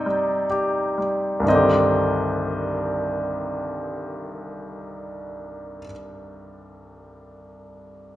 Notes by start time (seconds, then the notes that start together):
Already playing: C3 G3 D#4 D5 D#5 G5
0.06 G3
0.50 G4
0.98 G3
1.40 C2 G2
1.46 D#3 C4 D#5
1.52 D3 G4